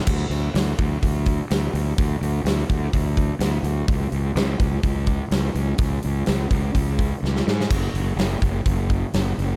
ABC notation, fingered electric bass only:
X:1
M:4/4
L:1/8
Q:1/4=126
K:C#phr
V:1 name="Fingered electric bass" clef=bass
D,, D,, D,, D,, D,,2 D,, D,, | D,, D,, D,, D,, D,,2 D,, D,, | C,, C,, C,, C,, C,,2 C,, C,, | C,, C,, C,, C,, C,,2 C,, G,, |
F,,, F,,, F,,, F,,, F,,,2 F,,, F,,, |]